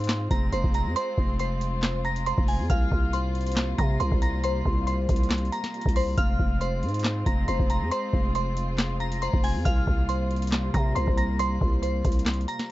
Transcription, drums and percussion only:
0.04 closed hi-hat medium
0.09 snare loud
0.09 clap loud
0.09 closed hi-hat medium
0.31 kick loud
0.31 closed hi-hat medium
0.53 closed hi-hat medium
0.64 kick loud
0.74 closed hi-hat medium
0.96 closed hi-hat loud
1.18 kick medium
1.39 closed hi-hat medium
1.61 closed hi-hat medium
1.83 snare loud
1.83 clap loud
1.83 closed hi-hat medium
2.05 closed hi-hat soft
2.16 closed hi-hat medium
2.26 closed hi-hat medium
2.38 kick loud
2.48 open hi-hat medium
2.70 kick loud
2.70 closed hi-hat medium
2.92 kick medium
3.13 closed hi-hat medium
3.35 closed hi-hat soft
3.41 closed hi-hat medium
3.47 closed hi-hat medium
3.52 closed hi-hat medium
3.57 snare loud
3.57 clap loud
3.57 closed hi-hat medium
3.78 kick loud
3.78 closed hi-hat medium
4.00 closed hi-hat medium
4.12 kick loud
4.22 closed hi-hat medium
4.44 closed hi-hat medium
4.65 kick medium
4.87 closed hi-hat medium
5.09 kick loud
5.09 closed hi-hat medium
5.16 closed hi-hat medium
5.23 closed hi-hat medium
5.31 snare loud
5.31 clap loud
5.31 closed hi-hat medium
5.38 closed hi-hat soft
5.45 closed hi-hat soft
5.52 closed hi-hat medium
5.64 snare medium
5.64 closed hi-hat soft
5.74 closed hi-hat soft
5.81 closed hi-hat medium
5.86 kick loud
5.86 closed hi-hat medium
5.96 open hi-hat medium
6.18 kick loud
6.18 closed hi-hat medium
6.39 kick medium
6.61 closed hi-hat medium
6.83 closed hi-hat soft
6.89 closed hi-hat medium
6.94 closed hi-hat medium
6.99 closed hi-hat medium
7.04 snare loud
7.04 clap loud
7.04 closed hi-hat medium
7.26 kick medium
7.26 closed hi-hat medium
7.48 closed hi-hat medium
7.60 kick loud
7.70 closed hi-hat medium
7.92 closed hi-hat medium
8.13 kick medium
8.35 closed hi-hat medium
8.57 closed hi-hat medium
8.78 snare loud
8.78 clap loud
8.78 closed hi-hat medium
9.00 closed hi-hat soft
9.12 closed hi-hat medium
9.22 closed hi-hat medium
9.33 kick loud
9.44 open hi-hat medium
9.65 kick loud
9.65 closed hi-hat medium
9.87 kick medium
10.09 closed hi-hat medium
10.31 closed hi-hat soft
10.36 closed hi-hat medium
10.42 closed hi-hat medium
10.47 closed hi-hat medium
10.52 snare loud
10.52 clap loud
10.52 closed hi-hat medium
10.74 kick loud
10.74 closed hi-hat medium
10.96 closed hi-hat medium
11.07 kick loud
11.18 closed hi-hat medium
11.39 closed hi-hat loud
11.61 kick medium
11.83 closed hi-hat medium
12.05 kick loud
12.05 closed hi-hat medium
12.12 closed hi-hat medium
12.19 closed hi-hat medium
12.26 snare loud
12.26 clap loud
12.26 closed hi-hat medium
12.34 closed hi-hat soft
12.41 closed hi-hat soft
12.48 closed hi-hat medium
12.59 snare medium
12.59 closed hi-hat soft

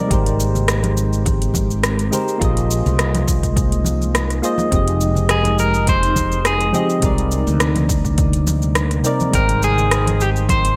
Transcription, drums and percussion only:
0.11 kick loud
0.11 closed hi-hat medium
0.11 cabasa soft
0.26 closed hi-hat soft
0.26 cabasa soft
0.40 cabasa medium
0.55 low conga medium
0.55 cabasa soft
0.68 cross-stick loud
0.68 closed hi-hat medium
0.68 cabasa soft
0.83 closed hi-hat soft
0.83 high conga medium
0.83 cabasa soft
0.97 cabasa medium
1.13 cabasa soft
1.25 kick loud
1.25 closed hi-hat medium
1.25 high conga medium
1.25 cabasa soft
1.42 closed hi-hat soft
1.42 cabasa soft
1.54 kick medium
1.54 high conga medium
1.54 cabasa medium
1.71 cabasa soft
1.83 cross-stick medium
1.83 closed hi-hat medium
1.83 cabasa soft
1.99 closed hi-hat soft
1.99 cabasa soft
2.13 low conga medium
2.13 cabasa medium
2.28 cabasa soft
2.41 kick loud
2.41 closed hi-hat medium
2.41 cabasa soft
2.57 closed hi-hat soft
2.57 cabasa soft
2.71 cabasa medium
2.86 low conga medium
2.86 cabasa soft
2.99 cross-stick medium
2.99 closed hi-hat medium
2.99 cabasa soft
3.15 closed hi-hat soft
3.15 high conga loud
3.15 low conga medium
3.15 cabasa soft
3.28 kick medium
3.28 cabasa medium
3.43 kick medium
3.43 closed hi-hat soft
3.43 cabasa soft
3.56 kick loud
3.56 closed hi-hat medium
3.56 cabasa soft
3.72 closed hi-hat soft
3.72 cabasa soft
3.84 high conga medium
3.84 cabasa medium
4.01 high conga medium
4.01 cabasa soft
4.15 cross-stick medium
4.15 closed hi-hat medium
4.15 cabasa soft
4.30 cross-stick soft
4.30 closed hi-hat soft
4.30 cabasa soft
4.43 cabasa medium
4.58 high conga medium
4.58 cabasa soft
4.72 kick loud
4.72 closed hi-hat medium
4.72 cabasa soft
4.88 closed hi-hat soft
4.88 cabasa soft
5.01 cabasa medium
5.15 low conga medium
5.15 cabasa soft
5.29 cross-stick medium
5.29 closed hi-hat medium
5.29 cabasa soft
5.44 closed hi-hat soft
5.44 high conga medium
5.44 cabasa soft
5.59 cabasa medium
5.74 cabasa soft
5.87 kick loud
5.87 closed hi-hat medium
5.87 high conga medium
5.87 cabasa soft
6.03 closed hi-hat soft
6.03 cabasa soft
6.16 kick medium
6.16 high conga medium
6.16 cabasa medium
6.32 cabasa soft
6.45 cross-stick medium
6.45 closed hi-hat medium
6.45 cabasa soft
6.61 closed hi-hat soft
6.61 cabasa soft
6.74 low conga medium
6.74 cabasa medium
6.90 cabasa soft
7.02 kick loud
7.02 closed hi-hat medium
7.02 cabasa soft
7.18 closed hi-hat soft
7.18 cabasa soft
7.31 cabasa medium
7.47 low conga medium
7.47 cabasa soft
7.60 cross-stick medium
7.60 closed hi-hat medium
7.60 cabasa soft
7.76 closed hi-hat soft
7.76 high conga medium
7.76 low conga medium
7.76 cabasa soft
7.89 kick medium
7.89 cabasa medium
8.05 kick medium
8.05 cabasa soft
8.18 kick loud
8.18 closed hi-hat medium
8.18 cabasa soft
8.33 closed hi-hat soft
8.33 cabasa soft
8.47 high conga medium
8.47 cabasa medium
8.62 high conga medium
8.62 cabasa soft
8.75 cross-stick medium
8.75 closed hi-hat medium
8.75 cabasa soft
8.91 cross-stick soft
8.91 closed hi-hat soft
8.91 cabasa soft
9.04 cabasa medium
9.20 high conga medium
9.20 cabasa soft
9.33 kick loud
9.33 closed hi-hat medium
9.33 cabasa soft
9.49 closed hi-hat soft
9.49 cabasa soft
9.63 cabasa medium
9.78 low conga medium
9.78 cabasa soft
9.91 cross-stick medium
9.91 closed hi-hat medium
9.91 cabasa soft
10.07 closed hi-hat soft
10.07 high conga medium
10.07 cabasa soft
10.21 cabasa medium
10.36 cabasa soft
10.49 kick loud
10.49 closed hi-hat medium
10.49 high conga medium
10.49 cabasa soft
10.65 closed hi-hat soft
10.65 cabasa soft

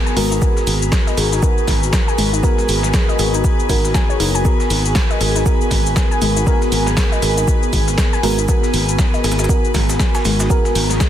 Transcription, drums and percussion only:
0.07 shaker soft
0.17 snare soft
0.17 open hi-hat loud
0.17 open hi-hat medium
0.32 shaker medium
0.42 kick loud
0.42 shaker medium
0.57 snare soft
0.57 shaker soft
0.67 open hi-hat loud
0.67 shaker medium
0.82 shaker medium
0.92 kick loud
0.92 snare loud
0.92 shaker medium
1.07 snare soft
1.07 shaker soft
1.17 open hi-hat loud
1.17 shaker medium
1.32 snare soft
1.32 shaker medium
1.43 kick loud
1.43 shaker medium
1.58 shaker soft
1.68 kick medium
1.68 snare soft
1.68 open hi-hat loud
1.68 shaker medium
1.83 shaker medium
1.93 kick loud
1.93 snare loud
1.93 shaker medium
2.08 shaker soft
2.18 open hi-hat medium
2.18 shaker medium
2.34 shaker medium
2.43 kick loud
2.43 shaker medium
2.58 snare soft
2.58 shaker soft
2.69 open hi-hat loud
2.69 shaker medium
2.83 snare soft
2.83 shaker medium
2.94 kick loud
2.94 snare loud
2.94 shaker medium
3.09 shaker soft
3.19 open hi-hat medium
3.19 shaker medium
3.34 closed hi-hat soft
3.34 shaker medium
3.44 kick loud
3.44 shaker medium
3.60 shaker soft
3.69 kick medium
3.69 open hi-hat loud
3.69 shaker medium
3.84 snare soft
3.84 shaker medium
3.94 kick loud
3.94 snare loud
3.94 shaker medium
4.10 shaker soft
4.20 snare soft
4.20 open hi-hat medium
4.35 shaker medium
4.45 kick loud
4.45 shaker medium
4.60 snare soft
4.60 shaker soft
4.70 open hi-hat loud
4.70 shaker medium
4.85 shaker medium
4.95 kick loud
4.95 snare loud
4.95 shaker medium
5.10 snare soft
5.10 shaker soft
5.21 open hi-hat medium
5.21 shaker medium
5.36 snare soft
5.36 shaker medium
5.46 kick loud
5.46 shaker medium
5.61 shaker soft
5.71 kick medium
5.71 snare soft
5.71 open hi-hat loud
5.71 shaker medium
5.86 shaker medium
5.96 kick loud
5.96 snare loud
5.96 shaker medium
6.12 shaker soft
6.22 open hi-hat medium
6.22 shaker medium
6.37 shaker medium
6.47 kick loud
6.47 shaker medium
6.62 snare soft
6.62 shaker soft
6.72 open hi-hat loud
6.72 shaker medium
6.86 snare soft
6.86 shaker medium
6.97 kick loud
6.97 snare loud
6.97 shaker medium
7.12 shaker soft
7.22 open hi-hat medium
7.22 shaker medium
7.37 closed hi-hat soft
7.37 shaker medium
7.48 kick loud
7.48 shaker medium
7.63 shaker soft
7.73 kick medium
7.73 open hi-hat loud
7.73 shaker medium
7.88 snare soft
7.88 shaker medium
7.98 kick loud
7.98 snare loud
7.98 shaker medium
8.13 shaker soft
8.23 snare soft
8.23 open hi-hat medium
8.38 shaker medium
8.49 kick loud
8.49 shaker medium
8.63 snare soft
8.63 shaker soft
8.74 open hi-hat loud
8.74 shaker medium
8.89 shaker medium
8.98 kick loud
8.98 snare loud
8.98 shaker medium
9.14 snare soft
9.14 shaker soft
9.24 snare medium
9.24 open hi-hat medium
9.24 shaker medium
9.32 snare medium
9.32 shaker medium
9.39 snare medium
9.39 shaker medium
9.44 snare medium
9.44 shaker medium
9.49 kick loud
9.49 shaker medium
9.65 shaker soft
9.74 kick medium
9.74 snare soft
9.74 snare loud
9.74 open hi-hat loud
9.74 shaker medium
9.89 snare loud
9.89 shaker medium
9.99 kick loud
9.99 snare loud
9.99 shaker medium
10.15 snare loud
10.15 shaker medium
10.15 shaker soft
10.25 snare loud
10.25 open hi-hat medium
10.25 shaker medium
10.40 snare loud
10.40 shaker medium
10.50 kick loud
10.50 shaker medium
10.65 snare soft
10.65 shaker soft
10.75 open hi-hat loud
10.75 shaker medium
10.90 snare soft
10.90 shaker medium
11.00 kick loud
11.00 snare loud
11.00 shaker medium

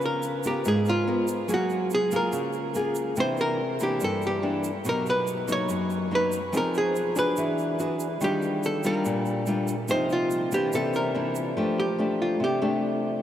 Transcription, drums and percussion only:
0.02 shaker soft
0.23 shaker medium
0.43 shaker medium
0.65 shaker medium
0.86 shaker soft
1.27 shaker medium
1.49 shaker medium
1.70 shaker soft
1.90 shaker medium
2.11 shaker medium
2.32 shaker medium
2.53 shaker soft
2.74 shaker medium
2.95 shaker medium
3.16 shaker medium
3.37 shaker soft
3.79 shaker medium
4.00 shaker medium
4.22 shaker soft
4.64 shaker medium
4.85 shaker medium
5.06 shaker soft
5.27 shaker medium
5.48 shaker medium
5.69 shaker medium
5.90 shaker soft
6.32 shaker medium
6.53 shaker medium
6.74 shaker soft
6.96 shaker medium
7.16 shaker medium
7.37 shaker medium
7.58 shaker soft
7.79 shaker medium
8.00 shaker medium
8.21 shaker medium
8.42 shaker soft
8.63 shaker medium
8.83 shaker medium
9.05 shaker medium
9.26 shaker soft
9.46 shaker soft
9.68 shaker medium
9.88 shaker medium
10.10 shaker soft
10.31 shaker medium
10.52 shaker medium
10.73 shaker medium
10.94 shaker soft
11.35 shaker medium

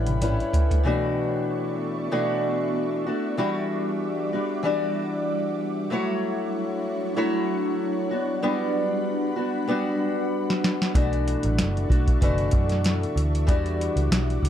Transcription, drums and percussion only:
0.07 closed hi-hat medium
0.07 high tom medium
0.22 closed hi-hat medium
0.22 mid tom medium
0.40 closed hi-hat soft
0.53 closed hi-hat medium
0.53 floor tom loud
0.71 closed hi-hat soft
0.71 floor tom medium
10.50 snare medium
10.64 snare medium
10.82 snare loud
10.95 kick loud
10.95 closed hi-hat loud
11.13 closed hi-hat soft
11.28 closed hi-hat medium
11.43 closed hi-hat medium
11.59 snare loud
11.59 closed hi-hat loud
11.77 closed hi-hat soft
11.90 kick loud
11.90 closed hi-hat medium
12.07 kick medium
12.07 closed hi-hat medium
12.22 kick medium
12.22 closed hi-hat medium
12.38 closed hi-hat soft
12.51 kick loud
12.51 closed hi-hat medium
12.69 snare soft
12.69 closed hi-hat medium
12.84 snare loud
12.84 closed hi-hat medium
13.03 closed hi-hat soft
13.17 closed hi-hat medium
13.35 closed hi-hat medium
13.48 kick loud
13.48 closed hi-hat loud
13.66 closed hi-hat soft
13.81 closed hi-hat medium
13.97 closed hi-hat medium
14.12 snare loud
14.12 closed hi-hat loud
14.30 closed hi-hat soft
14.45 closed hi-hat medium

